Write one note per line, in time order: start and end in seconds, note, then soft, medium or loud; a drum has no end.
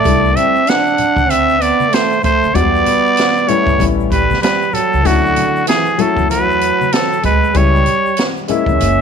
0.00 0.37 A3 medium
0.00 0.38 D5 medium
0.00 shaker medium
0.05 0.31 C2 loud
0.05 0.52 G3 medium
0.05 0.52 A3 medium
0.05 0.52 D4 medium
0.05 0.53 E4 medium
0.05 kick loud
0.05 closed hi-hat medium
0.25 shaker soft
0.35 0.68 C4 medium
0.35 0.71 E5 loud
0.35 closed hi-hat medium
0.35 high conga soft
0.35 low conga medium
0.35 shaker soft
0.55 shaker soft
0.67 1.30 D4 medium
0.67 1.32 F#5 loud
0.67 snare loud
0.67 closed hi-hat medium
0.67 shaker medium
0.86 shaker soft
0.98 closed hi-hat medium
0.98 low conga medium
0.98 shaker soft
1.16 1.70 D2 medium
1.16 kick medium
1.16 high conga medium
1.16 shaker soft
1.28 1.61 C4 medium
1.28 1.63 E5 loud
1.28 closed hi-hat loud
1.28 high conga soft
1.28 shaker medium
1.49 shaker soft
1.59 1.91 B3 medium
1.59 1.96 D5 medium
1.59 closed hi-hat medium
1.59 shaker soft
1.80 high conga medium
1.80 shaker medium
1.90 2.22 A3 medium
1.90 closed hi-hat loud
1.90 shaker medium
1.94 2.24 C5 medium
1.94 snare loud
2.12 shaker soft
2.22 2.55 A3 medium
2.22 2.56 C5 medium
2.22 kick medium
2.22 closed hi-hat medium
2.22 low conga medium
2.22 shaker soft
2.43 2.53 D2 medium
2.43 shaker soft
2.54 2.81 E2 loud
2.54 2.63 F#3 medium
2.54 3.50 B3 loud
2.54 3.44 B3 medium
2.54 3.44 D4 medium
2.54 3.44 F#4 medium
2.54 3.50 D5 loud
2.54 kick loud
2.54 closed hi-hat medium
2.54 shaker medium
2.61 3.46 G3 medium
2.75 shaker soft
2.86 closed hi-hat medium
2.86 high conga soft
2.86 low conga medium
2.86 shaker soft
3.06 shaker soft
3.17 snare loud
3.17 closed hi-hat medium
3.17 shaker medium
3.36 shaker soft
3.47 3.78 G3 medium
3.47 3.85 A3 medium
3.47 3.79 B3 medium
3.47 3.79 C#4 medium
3.47 3.80 E4 medium
3.47 3.85 C#5 medium
3.47 closed hi-hat medium
3.47 low conga medium
3.47 shaker soft
3.67 3.77 G2 medium
3.67 kick medium
3.67 high conga medium
3.67 shaker soft
3.79 4.33 A1 loud
3.79 4.19 G3 medium
3.79 4.19 B3 medium
3.79 4.19 C#4 medium
3.79 4.20 E4 medium
3.79 kick medium
3.79 closed hi-hat medium
3.79 high conga soft
3.79 shaker medium
4.00 shaker soft
4.10 4.40 G3 medium
4.10 4.40 B4 medium
4.10 kick medium
4.10 closed hi-hat medium
4.10 shaker soft
4.31 snare soft
4.31 high conga medium
4.31 shaker medium
4.42 4.74 G3 medium
4.42 4.75 B4 medium
4.42 snare loud
4.42 closed hi-hat medium
4.42 shaker medium
4.62 shaker soft
4.72 5.05 F#3 medium
4.72 5.08 A4 medium
4.72 closed hi-hat medium
4.72 low conga medium
4.72 shaker soft
4.93 5.03 C#2 medium
4.93 shaker soft
5.04 5.31 D2 loud
5.04 5.66 D3 medium
5.04 5.94 F#3 medium
5.04 5.94 A3 medium
5.04 5.94 C#4 medium
5.04 5.95 E4 medium
5.04 5.67 F#4 medium
5.04 kick loud
5.04 closed hi-hat medium
5.04 shaker medium
5.26 shaker soft
5.36 closed hi-hat medium
5.36 high conga soft
5.36 low conga medium
5.36 shaker soft
5.56 shaker soft
5.66 6.00 E3 medium
5.66 6.02 G#4 medium
5.66 snare loud
5.66 closed hi-hat medium
5.66 shaker medium
5.86 shaker soft
5.98 6.29 F#3 medium
5.98 6.87 F#3 medium
5.98 6.88 A3 medium
5.98 6.88 C#4 medium
5.98 6.88 E4 medium
5.98 6.30 A4 medium
5.98 closed hi-hat medium
5.98 low conga medium
5.98 shaker soft
6.17 6.70 E2 medium
6.17 kick medium
6.17 high conga medium
6.17 shaker soft
6.30 6.92 F#3 medium
6.30 6.94 B4 medium
6.30 closed hi-hat medium
6.30 high conga soft
6.30 shaker medium
6.50 shaker soft
6.61 closed hi-hat medium
6.61 shaker soft
6.81 high conga medium
6.81 shaker medium
6.92 7.23 F#3 medium
6.92 7.24 A4 medium
6.92 snare loud
6.92 closed hi-hat loud
6.92 shaker medium
7.12 shaker medium
7.23 7.50 D2 medium
7.23 7.56 G#3 medium
7.23 7.58 B4 medium
7.23 kick medium
7.23 closed hi-hat medium
7.23 low conga medium
7.23 shaker soft
7.43 shaker soft
7.54 7.81 C#2 loud
7.54 7.79 G3 medium
7.54 8.23 G3 medium
7.54 7.79 B3 medium
7.54 7.79 C#4 medium
7.54 7.80 E4 medium
7.54 8.24 C#5 loud
7.54 kick loud
7.54 closed hi-hat medium
7.54 shaker medium
7.75 shaker soft
7.86 closed hi-hat medium
7.86 low conga medium
7.86 shaker soft
8.06 shaker soft
8.17 snare loud
8.17 closed hi-hat medium
8.17 shaker medium
8.36 shaker soft
8.48 8.95 G#3 medium
8.48 8.96 A#3 medium
8.48 9.01 C#4 medium
8.48 8.96 C#4 medium
8.48 8.96 E4 medium
8.48 9.01 E5 medium
8.48 closed hi-hat medium
8.48 low conga medium
8.48 shaker soft
8.66 8.77 E2 medium
8.66 kick medium
8.66 high conga medium
8.66 shaker soft
8.80 9.01 F#1 medium
8.80 closed hi-hat loud
8.80 high conga soft
8.80 shaker medium